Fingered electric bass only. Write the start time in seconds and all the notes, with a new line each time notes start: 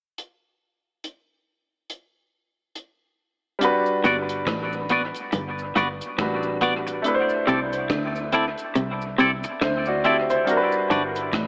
4.05 G1
4.47 A1
5.34 G1
5.77 G1
6.19 A1
7.48 C2
7.90 D2
8.76 C2
9.20 C2
9.62 D2
10.91 G1
11.34 A1